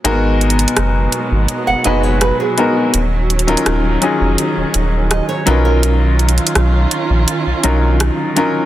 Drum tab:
HH |x---xxxxx---x---x---x---x---x---|x---xxxxx---x---x---x---x---x---|x---xxxxx---x---x---x---x---x---|
SD |--------r---------------r-------|--------r---------------r-------|--------r---------------r-------|